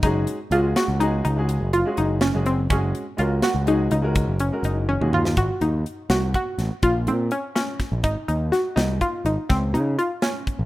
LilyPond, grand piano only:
\new Staff \with { instrumentName = "Grand piano" } { \time 11/8 \key aes \mixolydian \tempo 4 = 124 <aes des' ges' aes'>8. r16 <aes des' ges' aes'>8. r16 <aes des' ges' aes'>8 r16 <aes des' ges' aes'>8. r16 <aes des' ges' aes'>8. r16 <aes des' ges' aes'>8 r16 | <aes des' ges' aes'>8. r16 <aes des' ges' bes'>8. r16 <aes des' ges' aes'>8 r16 <aes des' ges' bes'>8. r16 <aes des' ges' bes'>8. r16 <aes des' ges' aes'>8 r16 | r1 r4. | r1 r4. | }